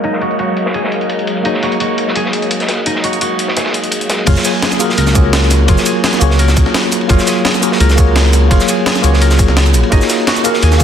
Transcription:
Already playing: analog synth pad F#3 G#3 A#4 C#5 D#5 F5, tine electric piano A#3 F#4 G#4 C#5 F5, harp F#4 G#4
0.04 harp D#4, closed hi-hat, ride
0.13 snare
0.21 harp F#4, closed hi-hat, ride
0.31 closed hi-hat
0.39 harp F#4, closed hi-hat, ride
0.57 closed hi-hat, ride
0.66 snare
0.74 harp G#4, closed hi-hat, ride
0.84 snare
0.92 closed hi-hat, ride
1.01 closed hi-hat
1.09 closed hi-hat, ride
1.19 closed hi-hat
1.27 closed hi-hat, ride
1.37 ride
1.43 tine electric piano A#3 F#4 G#4 F5, harp D#4, closed hi-hat, ride
1.47 tine electric piano C#5
1.54 snare
1.63 harp F#4, snare, closed hi-hat, ride
1.72 closed hi-hat
1.80 harp F#4, closed hi-hat, ride
1.98 closed hi-hat, ride
2.08 snare
2.15 harp G#4, closed hi-hat, ride
2.25 snare
2.33 closed hi-hat, ride
2.42 closed hi-hat
2.51 closed hi-hat, ride
2.60 snare, closed hi-hat
2.68 snare, closed hi-hat, ride
2.86 harp D#4, closed hi-hat, ride
2.95 snare
3.04 harp F#4, closed hi-hat, ride
3.13 closed hi-hat
3.21 harp F#4, closed hi-hat, ride
3.39 closed hi-hat, ride
3.48 snare
3.57 harp G#4, snare, closed hi-hat, ride
3.65 snare, ride
3.74 closed hi-hat, ride
3.84 closed hi-hat
3.91 closed hi-hat, ride
4.01 closed hi-hat
4.10 snare, closed hi-hat, ride
4.25 analog synth bass F#1, tine electric piano F#3 A#3 F4 G#4, harp F4, kick, closed hi-hat, ride, crash
4.29 tine electric piano C#5
4.36 snare, cabasa
4.45 harp G#4, snare, closed hi-hat, ride, cabasa
4.62 harp G#4, snare, closed hi-hat, ride
4.72 snare, cabasa
4.79 tine electric piano A#3 F4 F#4 G#4 A#4, closed hi-hat, ride, cabasa
4.90 snare
4.98 analog synth bass C#2, harp A#4, closed hi-hat, ride
5.07 snare, cabasa
5.13 tine electric piano A#3 F4 F#4 G#4, kick, closed hi-hat, ride, cabasa
5.17 tine electric piano C#5
5.25 analog synth bass C#2
5.33 snare, closed hi-hat, ride
5.43 snare
5.51 snare, closed hi-hat, ride, cabasa
5.66 analog synth bass F#1, tine electric piano F#3 A#3 F4 G#4, harp F4, kick, closed hi-hat, ride
5.70 tine electric piano C#5
5.78 snare, cabasa
5.86 harp G#4, closed hi-hat, ride, cabasa
6.04 harp G#4, snare, closed hi-hat, ride
6.13 snare, cabasa
6.19 analog synth bass C#2, tine electric piano A#3 F4 F#4 G#4, closed hi-hat, ride, cabasa
6.23 tine electric piano C#5
6.31 snare
6.39 harp A#4, closed hi-hat, ride
6.48 snare, cabasa
6.57 analog synth bass C#2, kick, closed hi-hat, ride, cabasa
6.66 snare
6.74 snare, closed hi-hat, ride
6.84 snare
6.91 closed hi-hat, ride, cabasa
7.01 ride
7.07 analog synth bass F#1, tine electric piano F#3 A#3 F4 G#4, harp F4, kick, closed hi-hat, ride
7.11 tine electric piano C#5
7.19 snare, cabasa
7.27 harp G#4, snare, closed hi-hat, ride, cabasa
7.45 harp G#4, snare, closed hi-hat, ride
7.54 snare, cabasa
7.61 tine electric piano A#3 F4 F#4 G#4 A#4, closed hi-hat, ride, cabasa
7.72 snare
7.80 analog synth bass C#2, harp A#4, closed hi-hat, ride
7.90 snare, cabasa
7.96 tine electric piano A#3 F4 F#4 G#4, kick, closed hi-hat, ride, cabasa
8.00 tine electric piano C#5
8.07 analog synth bass C#2
8.15 snare, closed hi-hat, ride
8.25 snare
8.33 snare, closed hi-hat, ride, cabasa
8.49 analog synth bass F#1, tine electric piano F#3 A#3 F4 G#4, harp F4, kick, closed hi-hat, ride
8.53 tine electric piano C#5
8.60 snare, cabasa
8.69 harp G#4, closed hi-hat, ride, cabasa
8.86 harp G#4, snare, closed hi-hat, ride
8.96 snare, cabasa
9.02 analog synth bass C#2, tine electric piano A#3 F4 F#4 G#4, closed hi-hat, ride, cabasa
9.06 tine electric piano C#5
9.13 snare
9.21 harp A#4, closed hi-hat, ride
9.30 snare, cabasa
9.39 analog synth bass F#1, kick, closed hi-hat, ride, cabasa
9.48 analog synth bass C#2, snare
9.57 snare, closed hi-hat, ride
9.66 snare, cabasa
9.74 analog synth bass A#1, closed hi-hat, ride, cabasa
9.83 ride
9.90 analog synth bass G#1, tine electric piano A#3 F4 F#4 G#4, harp D#4, kick, closed hi-hat, ride
9.94 tine electric piano C#5
10.01 snare, cabasa
10.09 snare, closed hi-hat, ride, cabasa
10.27 harp F#4, snare, closed hi-hat, ride
10.36 snare, cabasa
10.44 tine electric piano A#3 F#4 G#4 A#4 F5, harp F#4, closed hi-hat, ride, cabasa
10.54 snare
10.63 analog synth bass D#2, harp G#4, closed hi-hat, ride
10.72 snare, cabasa
10.78 tine electric piano A#3 F#4 F5, kick, closed hi-hat, ride, cabasa

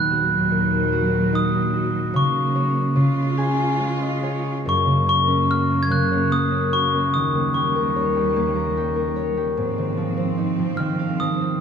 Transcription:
Already playing: string section D#2 A#2 F#3, harp D#3 B3 D#4, glockenspiel F#6
0.10 harp F#4
0.51 harp A#3
0.92 harp F#4
1.33 harp D#4, glockenspiel D#6
1.73 harp F#4
2.14 harp C#3, string section C#3 A#3, glockenspiel C#6
2.55 harp C#5
2.96 harp C#3, string section G#3 F4
3.38 harp G#4 G#5
3.80 harp G#3 F5
4.02 harp D#5
4.23 harp G#4 C#5
4.66 harp F#2, string section F#2 C#3 A#3, glockenspiel C#6
4.86 harp C#3
5.06 harp A#3, glockenspiel C#6
5.28 harp C#4
5.49 harp F#4, glockenspiel F6
5.71 harp A#3
5.83 glockenspiel G#6
5.90 harp C#3, glockenspiel F#6
6.11 harp C#5
6.31 harp A#3, glockenspiel D#6
6.52 harp C#4
6.73 harp F#4, glockenspiel C#6
6.93 harp A#3
7.14 string section D#2 G3, harp D#3, glockenspiel D#6
7.35 harp A#3
7.54 harp G4, glockenspiel C#6
7.76 harp A#4
7.96 harp C#5
8.16 harp G4
8.36 harp A#3
8.55 harp A#5
8.77 harp G4
8.96 harp A#4
9.16 harp C#5
9.37 harp G4
9.57 string section G#2 F3 C4, harp G#2
9.78 harp D#3
9.97 harp F3
10.17 harp C4
10.38 harp D#4
10.59 harp F3
10.77 harp D#3, glockenspiel F6
10.99 harp F5
11.20 harp F3, glockenspiel D#6
11.41 harp C4

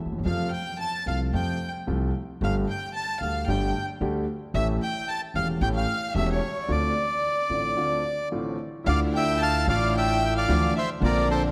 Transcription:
0.05 upright bass D2, grand piano D2
0.12 upright bass D#2, grand piano D#2
0.18 grand piano E2, upright bass E2
0.25 upright bass F2, grand piano F2 C3 F3 A3 F4, violin F5, bandoneon F5
0.52 violin G5, bandoneon G5
0.80 violin A5, bandoneon A5
1.06 upright bass C2, grand piano C2 C3 F3 A3 F4, violin F5, bandoneon F5
1.33 upright bass F2, grand piano F2 C3 F3 A3 F4, violin G5, bandoneon G5
1.87 grand piano C2 C3 F3 A3 F4, upright bass C2
2.41 upright bass G1, grand piano G1 G2 D3 G3 A3 G4, bandoneon F5, violin F5
2.69 violin G5, bandoneon G5
2.95 violin A5, bandoneon A5
3.21 upright bass D2, grand piano D2 D3 G3 A3 G4, violin F5, bandoneon F5
3.48 upright bass G1, grand piano G1 G2 D3 G3 A3 G4, violin G5, bandoneon G5
4.01 upright bass D2, grand piano D2 D3 G3 A3 G4
4.54 upright bass A1, grand piano A1 A2 E3 A3 C#4 G4, violin E5, bandoneon E5
4.83 violin G5, bandoneon G5
5.08 violin A5, bandoneon A5
5.34 upright bass E1, grand piano E1 E2 E3 A3 C#4 G4, violin F5, bandoneon F5
5.61 upright bass A1, grand piano A1 A2 E3 A3 C#4 G4, violin G5, bandoneon G5
5.75 violin F5, bandoneon F5
6.15 upright bass E1, grand piano E1 E2 E3 A3 C#4 G4, violin E5, bandoneon E5
6.29 violin C#5, bandoneon C#5
6.68 grand piano D2 D3 A3 C4 F4, upright bass D2, violin D5, bandoneon D5
7.49 upright bass A1, grand piano A1 A2 D3 A3 C4 F4
7.77 grand piano D2 D3 A3 C4 F4
8.32 grand piano A1 A2 D3 A3 C4 F4
8.84 grand piano D2 D3 A3 D4 E4 F4, upright bass D2, string section D4 E4, violin F5, bandoneon F5
8.89 bandoneon D5
9.14 bandoneon E5 G5, violin G5
9.40 bandoneon F5 A5, violin A5
9.66 upright bass A1, grand piano A1 A2 A3 D4 E4 F4, string section D4 E4, bandoneon D5 F5, violin F5
9.96 bandoneon E5 G5, violin G5
10.36 bandoneon D5 F5, violin F5
10.48 upright bass D2, grand piano D2 D3 E3 A3 D4 F4, string section F3 D4 E4
10.76 bandoneon C5 E5, violin E5
11.00 upright bass A#1, grand piano A#1 A#2 D3 A#3 C4, string section A#3 C4 D4, violin D5, bandoneon D5
11.04 grand piano F4, bandoneon A#4
11.31 bandoneon A4 C5, violin C5

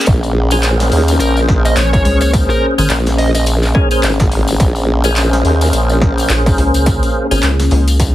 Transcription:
Already playing: analog synth pad A#3 C#4 G#4
0.01 closed hi-hat
0.06 wobble bass A#1, analog synth pad C5, kick, closed hi-hat, tambourine
0.23 tambourine
0.51 tonewheel organ C#4 G#4 A#4 C5, closed hi-hat, tambourine
0.63 clap, closed hi-hat, tambourine
0.80 snare, closed hi-hat, tambourine
0.92 wobble bass D#2, open hi-hat
1.08 closed hi-hat, tambourine
1.20 wobble bass A#1, lead electric guitar A#4, closed hi-hat, tambourine
1.37 tambourine
1.49 kick, snare
1.65 lead electric guitar D#5, closed hi-hat, tambourine
1.76 analog synth bass A#1, lead electric guitar C#5, clap, closed hi-hat, tambourine
1.93 lead electric guitar C#5, kick, closed hi-hat, tambourine
2.05 analog synth bass C#2, lead electric guitar C#5, open hi-hat
2.21 lead electric guitar C#5, closed hi-hat, tambourine
2.33 kick, closed hi-hat, tambourine
2.50 lead electric guitar A#4, tambourine
2.78 analog synth bass G#1, tonewheel organ C#4 G#4 A#4 C5, closed hi-hat, tambourine
2.90 wobble bass A#1, clap, closed hi-hat, tambourine
3.06 snare, closed hi-hat, tambourine
3.18 lead electric guitar D#5, open hi-hat
3.35 lead electric guitar D#5, closed hi-hat, tambourine
3.46 closed hi-hat, tambourine
3.63 clap, tambourine
3.75 tonewheel organ C#4 G#4 A#4 C#5, kick
3.91 tonewheel organ C#4 G#4 A#4 C5, closed hi-hat, tambourine
4.03 wobble bass G#1, clap, closed hi-hat, tambourine
4.19 kick, snare, closed hi-hat, tambourine
4.32 open hi-hat
4.47 closed hi-hat, tambourine
4.60 wobble bass A#1, kick, closed hi-hat, tambourine
4.75 tambourine
5.04 tonewheel organ C#4 G#4 A#4 C5, closed hi-hat, tambourine
5.16 clap, closed hi-hat, tambourine
5.33 snare, closed hi-hat, tambourine
5.45 wobble bass D#2, open hi-hat
5.61 closed hi-hat, tambourine
5.73 wobble bass A#1, closed hi-hat, tambourine
5.89 tambourine
6.01 kick, snare
6.18 closed hi-hat, tambourine
6.29 analog synth bass A#1, clap, closed hi-hat, tambourine
6.46 kick, closed hi-hat, tambourine
6.58 analog synth bass C#2, open hi-hat
6.74 closed hi-hat, tambourine
6.86 kick, closed hi-hat, tambourine
7.03 closed hi-hat, tambourine
7.31 analog synth bass G#1, tonewheel organ C#4 G#4 A#4 C5, closed hi-hat, tambourine
7.42 analog synth bass C#2, clap, closed hi-hat, tambourine
7.60 snare, closed hi-hat, tambourine
7.71 analog synth bass C#2, open hi-hat
7.88 closed hi-hat, tambourine
8.00 kick, closed hi-hat, tambourine

